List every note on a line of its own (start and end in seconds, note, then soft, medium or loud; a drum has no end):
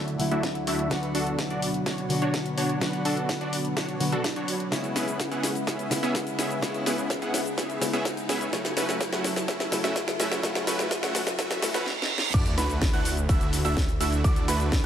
0.00 0.87 D2 medium
0.00 0.16 D3 medium
0.00 0.87 D3 medium
0.00 0.16 F#3 medium
0.00 0.17 A3 medium
0.00 0.24 A3 medium
0.00 0.24 D4 medium
0.00 4.68 D4 medium
0.00 0.17 E4 medium
0.00 0.24 E4 medium
0.00 0.24 F#4 medium
0.00 0.87 F#4 medium
0.00 0.24 E5 medium
0.00 riser medium
0.08 closed hi-hat soft
0.18 0.88 D3 medium
0.18 0.88 F#3 medium
0.18 0.88 A3 medium
0.18 0.89 E4 medium
0.18 open hi-hat loud
0.31 0.49 A3 medium
0.31 0.49 D4 medium
0.31 0.49 E4 medium
0.31 0.49 F#4 medium
0.31 0.49 E5 loud
0.31 closed hi-hat soft
0.43 kick loud
0.43 snare medium
0.43 closed hi-hat medium
0.55 closed hi-hat soft
0.67 0.88 A3 medium
0.67 0.88 D4 medium
0.67 0.88 E4 medium
0.67 0.88 F#4 medium
0.67 0.88 E5 medium
0.67 open hi-hat loud
0.79 closed hi-hat soft
0.90 4.68 B2 medium
0.90 2.07 D3 medium
0.90 2.07 F#3 medium
0.90 4.68 F#3 medium
0.90 2.07 B3 medium
0.90 1.12 D4 medium
0.90 1.12 F#4 medium
0.90 2.08 F#4 medium
0.90 1.12 B4 medium
0.90 8.49 B4 medium
0.90 kick loud
0.90 snare medium
0.90 closed hi-hat medium
1.03 closed hi-hat soft
1.15 1.48 D4 medium
1.15 1.48 F#4 medium
1.15 1.48 A4 loud
1.15 open hi-hat loud
1.27 closed hi-hat soft
1.39 kick loud
1.39 snare medium
1.39 closed hi-hat medium
1.50 1.68 D4 medium
1.50 1.68 F#4 medium
1.50 1.68 D5 medium
1.50 closed hi-hat soft
1.62 open hi-hat loud
1.74 closed hi-hat soft
1.86 2.14 D4 medium
1.86 2.14 F#4 medium
1.86 2.14 C#5 medium
1.86 kick loud
1.86 snare medium
1.86 closed hi-hat medium
1.98 closed hi-hat soft
2.09 2.78 D3 medium
2.09 2.78 F#3 medium
2.09 2.79 B3 medium
2.09 2.79 F#4 medium
2.09 open hi-hat loud
2.22 2.39 D4 loud
2.22 2.39 F#4 medium
2.22 2.39 C#5 loud
2.22 closed hi-hat soft
2.34 kick loud
2.34 snare medium
2.34 closed hi-hat medium
2.46 closed hi-hat soft
2.58 2.79 D4 medium
2.58 2.79 F#4 medium
2.58 2.79 C#5 medium
2.58 open hi-hat loud
2.69 closed hi-hat soft
2.80 3.97 D3 medium
2.80 3.97 F#3 medium
2.80 3.98 B3 medium
2.80 3.02 D4 medium
2.80 3.02 F#4 medium
2.80 3.98 F#4 medium
2.80 3.02 B4 medium
2.80 kick loud
2.80 snare medium
2.80 closed hi-hat medium
2.93 closed hi-hat soft
3.05 3.38 D4 medium
3.05 3.38 F#4 medium
3.05 3.38 A4 loud
3.05 open hi-hat loud
3.17 closed hi-hat soft
3.29 kick loud
3.29 snare medium
3.29 closed hi-hat medium
3.41 3.58 D4 medium
3.41 3.58 F#4 medium
3.41 3.58 D5 medium
3.41 closed hi-hat soft
3.53 open hi-hat loud
3.65 closed hi-hat soft
3.77 4.04 D4 medium
3.77 4.04 F#4 medium
3.77 4.04 C#5 medium
3.77 kick loud
3.77 snare medium
3.77 closed hi-hat medium
3.89 closed hi-hat soft
4.00 4.13 D3 medium
4.00 4.13 F#3 medium
4.00 4.13 B3 medium
4.00 4.14 F#4 loud
4.00 open hi-hat loud
4.12 4.33 D4 medium
4.12 4.33 F#4 medium
4.12 4.33 A4 medium
4.12 closed hi-hat soft
4.24 kick loud
4.24 snare medium
4.24 closed hi-hat medium
4.36 4.69 D4 medium
4.36 4.69 F#4 medium
4.36 4.69 C#5 medium
4.36 closed hi-hat soft
4.48 open hi-hat loud
4.60 closed hi-hat soft
4.71 5.88 C#3 medium
4.71 8.49 C#3 medium
4.71 5.88 G#3 medium
4.71 8.49 G#3 medium
4.71 4.93 B3 medium
4.71 5.88 B3 medium
4.71 4.93 C#4 medium
4.71 4.93 E4 medium
4.71 11.82 E4 medium
4.71 5.89 E4 medium
4.71 4.93 G#4 medium
4.71 4.93 C#5 medium
4.71 kick loud
4.71 snare medium
4.71 closed hi-hat medium
4.71 shaker soft
4.84 closed hi-hat soft
4.84 shaker soft
4.96 5.29 B3 medium
4.96 5.29 C#4 medium
4.96 5.29 E4 medium
4.96 5.29 G#4 medium
4.96 5.29 B4 loud
4.96 snare medium
4.96 open hi-hat loud
4.96 shaker medium
5.08 closed hi-hat soft
5.08 shaker soft
5.20 kick loud
5.20 snare medium
5.20 closed hi-hat medium
5.20 shaker soft
5.31 5.49 B3 medium
5.31 5.49 C#4 medium
5.31 5.49 E4 medium
5.31 5.49 G#4 medium
5.31 5.49 F#5 medium
5.31 closed hi-hat soft
5.31 shaker soft
5.43 snare medium
5.43 open hi-hat loud
5.43 shaker medium
5.55 closed hi-hat soft
5.55 shaker soft
5.67 5.95 B3 medium
5.67 5.95 C#4 medium
5.67 5.95 E4 medium
5.67 5.95 G#4 medium
5.67 5.95 E5 medium
5.67 kick loud
5.67 snare medium
5.67 closed hi-hat medium
5.67 shaker soft
5.79 closed hi-hat soft
5.79 shaker soft
5.90 6.59 C#3 medium
5.90 6.59 G#3 medium
5.90 6.60 B3 medium
5.90 6.60 E4 medium
5.90 snare medium
5.90 open hi-hat loud
5.90 shaker medium
6.03 6.20 B3 medium
6.03 6.20 C#4 medium
6.03 6.20 E4 medium
6.03 6.20 G#4 medium
6.03 6.20 E5 loud
6.03 closed hi-hat soft
6.03 shaker soft
6.15 kick loud
6.15 snare medium
6.15 closed hi-hat medium
6.15 shaker soft
6.27 closed hi-hat soft
6.27 shaker soft
6.39 6.60 B3 medium
6.39 6.60 C#4 medium
6.39 6.60 E4 medium
6.39 6.60 G#4 medium
6.39 6.60 E5 loud
6.39 snare medium
6.39 open hi-hat loud
6.39 shaker medium
6.51 closed hi-hat soft
6.51 shaker soft
6.61 7.78 C#3 medium
6.61 7.78 G#3 medium
6.61 6.83 B3 medium
6.61 7.79 B3 medium
6.61 6.83 C#4 medium
6.61 6.83 E4 medium
6.61 7.79 E4 medium
6.61 6.83 G#4 medium
6.61 6.83 C#5 medium
6.61 kick loud
6.61 snare medium
6.61 closed hi-hat medium
6.61 shaker soft
6.74 closed hi-hat soft
6.74 shaker soft
6.86 7.19 B3 medium
6.86 7.19 C#4 medium
6.86 7.19 E4 medium
6.86 7.19 G#4 medium
6.86 7.19 B4 loud
6.86 snare medium
6.86 open hi-hat loud
6.86 shaker medium
6.98 closed hi-hat soft
6.98 shaker soft
7.10 kick loud
7.10 snare medium
7.10 closed hi-hat medium
7.10 shaker soft
7.22 7.39 B3 medium
7.22 7.39 C#4 medium
7.22 7.39 E4 medium
7.22 7.39 G#4 medium
7.22 7.39 F#5 medium
7.22 closed hi-hat soft
7.22 shaker soft
7.34 snare medium
7.34 open hi-hat loud
7.34 shaker medium
7.46 closed hi-hat soft
7.46 shaker soft
7.58 7.85 B3 medium
7.58 7.85 C#4 medium
7.58 7.85 E4 medium
7.58 7.85 G#4 medium
7.58 7.85 E5 medium
7.58 kick loud
7.58 snare medium
7.58 closed hi-hat medium
7.58 shaker soft
7.70 closed hi-hat soft
7.70 shaker soft
7.80 8.49 C#3 medium
7.80 8.50 G#3 medium
7.80 8.50 B3 medium
7.80 8.51 E4 medium
7.80 snare medium
7.80 open hi-hat loud
7.80 shaker medium
7.93 8.11 B3 medium
7.93 8.11 C#4 medium
7.93 8.11 E4 medium
7.93 8.11 G#4 medium
7.93 8.11 E5 loud
7.93 closed hi-hat soft
7.93 shaker soft
8.05 kick loud
8.05 snare medium
8.05 closed hi-hat medium
8.05 shaker soft
8.17 closed hi-hat soft
8.17 shaker soft
8.29 8.50 B3 medium
8.29 8.50 C#4 medium
8.29 8.50 E4 medium
8.29 8.50 G#4 medium
8.29 8.50 E5 medium
8.29 snare medium
8.29 open hi-hat loud
8.29 shaker medium
8.41 closed hi-hat soft
8.41 shaker soft
8.52 11.83 F#2 medium
8.52 9.69 C#3 medium
8.52 9.69 F#3 medium
8.52 11.83 F#3 medium
8.52 8.74 A3 medium
8.52 9.69 A3 medium
8.52 8.74 C#4 medium
8.52 8.74 E4 medium
8.52 9.70 E4 medium
8.52 8.74 F#4 medium
8.52 11.83 A4 loud
8.52 8.74 C#5 medium
8.52 kick loud
8.52 snare medium
8.52 closed hi-hat medium
8.52 shaker soft
8.65 snare medium
8.65 closed hi-hat soft
8.65 shaker soft
8.77 9.10 A3 medium
8.77 9.10 C#4 medium
8.77 9.10 E4 medium
8.77 9.10 F#4 medium
8.77 9.10 B4 loud
8.77 snare loud
8.77 open hi-hat loud
8.77 shaker medium
8.89 snare medium
8.89 closed hi-hat soft
8.89 shaker soft
9.01 kick loud
9.01 snare loud
9.01 closed hi-hat medium
9.01 shaker soft
9.12 9.30 A3 medium
9.12 9.30 C#4 medium
9.12 9.30 E4 medium
9.12 9.30 F#4 medium
9.12 9.30 F#5 medium
9.12 snare medium
9.12 closed hi-hat soft
9.12 shaker soft
9.24 snare loud
9.24 open hi-hat loud
9.24 shaker medium
9.36 snare medium
9.36 closed hi-hat soft
9.36 shaker soft
9.48 9.76 A3 medium
9.48 9.76 C#4 medium
9.48 9.76 E4 medium
9.48 9.76 F#4 medium
9.48 9.76 E5 medium
9.48 kick loud
9.48 snare loud
9.48 closed hi-hat medium
9.48 shaker soft
9.60 snare medium
9.60 closed hi-hat soft
9.60 shaker soft
9.71 10.40 C#3 medium
9.71 10.40 F#3 medium
9.71 10.41 A3 medium
9.71 10.41 E4 medium
9.71 snare loud
9.71 open hi-hat loud
9.71 shaker medium
9.84 10.01 A3 loud
9.84 10.01 C#4 medium
9.84 10.01 E4 medium
9.84 10.01 F#4 medium
9.84 10.01 E5 loud
9.84 snare medium
9.84 closed hi-hat soft
9.84 shaker soft
9.96 kick loud
9.96 snare loud
9.96 closed hi-hat medium
9.96 shaker soft
10.08 snare medium
10.08 closed hi-hat soft
10.08 shaker soft
10.20 10.41 A3 medium
10.20 10.41 C#4 medium
10.20 10.41 E4 medium
10.20 10.41 F#4 medium
10.20 10.41 E5 medium
10.20 snare loud
10.20 open hi-hat loud
10.20 shaker medium
10.32 snare medium
10.32 closed hi-hat soft
10.32 shaker soft
10.42 11.59 C#3 medium
10.42 11.59 F#3 medium
10.42 10.64 A3 medium
10.42 11.60 A3 medium
10.42 10.64 C#4 medium
10.42 10.64 E4 medium
10.42 11.60 E4 loud
10.42 10.64 F#4 medium
10.42 10.64 C#5 medium
10.42 kick loud
10.42 snare loud
10.42 closed hi-hat medium
10.42 shaker soft
10.55 snare medium
10.55 closed hi-hat soft
10.55 shaker soft
10.67 11.00 A3 medium
10.67 11.00 C#4 medium
10.67 11.00 E4 medium
10.67 11.00 F#4 medium
10.67 11.00 B4 loud
10.67 snare loud
10.67 open hi-hat loud
10.67 shaker medium
10.79 snare medium
10.79 closed hi-hat soft
10.79 shaker soft
10.91 kick loud
10.91 snare loud
10.91 closed hi-hat medium
10.91 shaker soft
11.03 11.20 A3 medium
11.03 11.20 C#4 medium
11.03 11.20 E4 medium
11.03 11.20 F#4 medium
11.03 11.20 F#5 medium
11.03 snare medium
11.03 closed hi-hat soft
11.03 shaker soft
11.15 snare loud
11.15 open hi-hat loud
11.15 shaker medium
11.27 snare medium
11.27 closed hi-hat soft
11.27 shaker soft
11.39 11.66 A3 medium
11.39 11.66 C#4 medium
11.39 11.66 E4 medium
11.39 11.66 F#4 medium
11.39 11.66 E5 medium
11.39 kick loud
11.39 snare loud
11.39 closed hi-hat medium
11.39 reverse cymbal medium
11.39 shaker soft
11.51 snare medium
11.51 closed hi-hat soft
11.51 shaker soft
11.62 11.75 C#3 medium
11.62 11.75 F#3 medium
11.62 11.75 A3 medium
11.62 11.76 E4 loud
11.62 snare loud
11.62 open hi-hat loud
11.62 shaker medium
11.74 11.86 A3 medium
11.74 11.86 C#4 medium
11.74 11.86 E4 medium
11.74 11.86 F#4 medium
11.74 11.86 B4 loud
11.74 snare medium
11.74 closed hi-hat soft
11.74 shaker soft
11.86 snare medium
12.02 snare medium
12.18 snare loud
12.34 12.55 D2 medium
12.34 14.86 D3 medium
12.34 12.55 A3 medium
12.34 14.86 A3 medium
12.34 12.55 D4 medium
12.34 14.22 E4 medium
12.34 12.55 E4 medium
12.34 12.55 F#4 medium
12.34 14.86 F#4 medium
12.34 12.55 D5 medium
12.34 12.55 D6 medium
12.34 kick loud
12.34 closed hi-hat medium
12.34 crash loud
12.34 sub drop medium
12.34 shaker soft
12.46 closed hi-hat soft
12.46 shaker soft
12.58 12.91 D2 loud
12.58 12.91 A3 medium
12.58 12.91 D4 medium
12.58 12.91 E4 medium
12.58 12.91 F#4 medium
12.58 12.91 B4 loud
12.58 12.91 B5 loud
12.58 snare medium
12.58 open hi-hat loud
12.58 shaker medium
12.70 closed hi-hat soft
12.70 shaker soft
12.81 kick loud
12.81 snare loud
12.81 closed hi-hat medium
12.81 shaker soft
12.93 13.27 D2 loud
12.93 13.11 A3 medium
12.93 13.11 D4 medium
12.93 13.11 E4 medium
12.93 13.11 F#4 medium
12.93 13.11 F#5 medium
12.93 13.11 F#6 medium
12.93 closed hi-hat soft
12.93 shaker soft
13.05 open hi-hat loud
13.05 shaker medium
13.17 closed hi-hat soft
13.17 shaker soft
13.29 13.62 D2 loud
13.29 13.57 A3 medium
13.29 13.57 D4 medium
13.29 13.57 E4 medium
13.29 13.57 F#4 medium
13.29 13.57 E5 medium
13.29 13.57 E6 medium
13.29 kick loud
13.29 closed hi-hat medium
13.29 shaker soft
13.41 closed hi-hat soft
13.41 shaker soft
13.53 open hi-hat loud
13.53 shaker medium
13.65 13.98 D2 loud
13.65 13.82 A3 loud
13.65 13.82 D4 medium
13.65 13.82 E4 medium
13.65 13.82 F#4 medium
13.65 13.82 E5 loud
13.65 13.82 E6 loud
13.65 closed hi-hat soft
13.65 shaker soft
13.77 kick loud
13.77 snare loud
13.77 closed hi-hat medium
13.77 shaker soft
13.89 closed hi-hat soft
13.89 shaker soft
14.01 14.22 D2 loud
14.01 14.21 A3 medium
14.01 14.21 D4 medium
14.01 14.21 E4 medium
14.01 14.21 F#4 medium
14.01 14.21 E5 loud
14.01 14.21 E6 loud
14.01 open hi-hat loud
14.01 shaker medium
14.12 closed hi-hat soft
14.12 shaker soft
14.24 14.46 D2 loud
14.24 14.45 A3 medium
14.24 14.45 D4 medium
14.24 14.86 D4 medium
14.24 14.45 E4 medium
14.24 14.45 F#4 medium
14.24 14.45 D5 medium
14.24 14.45 D6 medium
14.24 kick loud
14.24 closed hi-hat medium
14.24 shaker soft
14.36 closed hi-hat soft
14.36 shaker soft
14.48 14.81 D2 medium
14.48 14.81 A3 medium
14.48 14.81 D4 medium
14.48 14.81 E4 medium
14.48 14.81 F#4 medium
14.48 14.81 B4 loud
14.48 14.81 B5 loud
14.48 open hi-hat loud
14.48 shaker medium
14.60 closed hi-hat soft
14.60 shaker soft
14.72 kick loud
14.72 snare loud
14.72 closed hi-hat medium
14.72 shaker soft